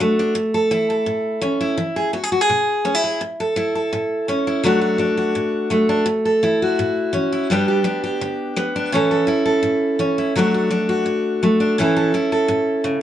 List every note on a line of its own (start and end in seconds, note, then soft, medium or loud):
0.00 0.32 F#3 medium
0.00 1.42 A3 medium
0.00 0.18 D4 medium
0.00 0.35 F#4 medium
0.19 0.34 D4 medium
0.35 0.67 A2 medium
0.54 0.89 A4 medium
0.71 1.03 E3 medium
0.71 1.60 E4 medium
0.90 1.76 A4 soft
1.06 1.39 A2 medium
1.42 1.74 E3 medium
1.42 1.76 C#4 medium
1.61 2.16 E4 medium
1.77 2.10 E3 medium
1.96 2.13 G#4 medium
2.13 2.46 B3 medium
2.13 2.23 F#4 soft
2.23 2.32 G#4 soft
2.32 2.41 F#4 soft
2.41 3.03 G#4 soft
2.50 2.82 B2 medium
2.85 3.17 B3 medium
2.85 2.95 C#4 medium
2.95 3.21 E4 soft
3.04 3.19 G#4 medium
3.21 3.53 A2 medium
3.40 3.75 A4 soft
3.56 3.88 E3 medium
3.56 4.46 E4 soft
3.75 4.66 A4 soft
3.93 4.24 A2 medium
4.28 4.60 E3 medium
4.28 4.62 C#4 soft
4.47 4.62 E4 soft
4.63 4.96 D3 medium
4.63 4.97 F#3 medium
4.63 5.70 A3 medium
4.63 4.98 D4 medium
4.63 4.80 F#4 medium
4.81 5.16 F#4 soft
4.98 5.31 F#3 medium
4.98 5.88 D4 soft
5.17 6.06 F#4 soft
5.35 5.67 A2 medium
5.70 6.02 F#3 medium
5.70 7.13 A3 medium
5.89 6.04 D4 medium
6.06 6.38 A2 medium
6.25 6.60 A4 soft
6.43 6.74 E3 medium
6.43 7.31 E4 medium
6.62 7.50 F#4 soft
6.79 7.10 A2 medium
7.13 7.45 E3 medium
7.13 7.47 C#4 soft
7.32 7.47 E4 medium
7.50 7.82 G2 medium
7.50 7.83 G3 medium
7.50 8.56 B3 medium
7.50 7.84 D4 medium
7.50 7.67 G4 medium
7.68 8.02 G4 soft
7.84 8.17 G3 medium
7.84 8.74 D4 medium
8.04 8.90 G4 soft
8.21 8.53 D3 medium
8.56 8.88 G3 medium
8.56 8.90 B3 medium
8.76 8.91 D4 medium
8.92 9.24 A2 medium
8.92 9.26 E3 medium
8.92 9.99 C#4 medium
8.92 9.27 E4 soft
8.92 9.10 A4 medium
9.11 9.44 A4 soft
9.27 9.59 E3 medium
9.27 10.17 E4 medium
9.45 10.33 A4 medium
9.63 9.95 A2 medium
9.99 10.31 E3 medium
9.99 10.33 C#4 medium
10.18 10.33 E4 medium
10.36 10.67 D3 medium
10.36 10.69 F#3 medium
10.36 11.42 A3 medium
10.36 10.70 D4 medium
10.36 10.53 F#4 medium
10.54 10.88 F#4 medium
10.71 11.03 F#3 medium
10.71 11.59 D4 medium
10.89 11.78 F#4 medium
11.06 11.38 A2 medium
11.43 11.74 F#3 medium
11.43 11.78 A3 medium
11.60 11.76 D4 medium
11.78 12.10 A2 medium
11.78 12.14 E3 medium
11.78 13.02 C#4 medium
11.78 12.14 E4 medium
11.78 11.95 A4 medium
11.97 12.31 A4 medium
12.14 12.46 E3 medium
12.14 13.02 E4 medium
12.32 13.02 A4 soft
12.48 12.81 A2 medium
12.84 13.01 C#3 medium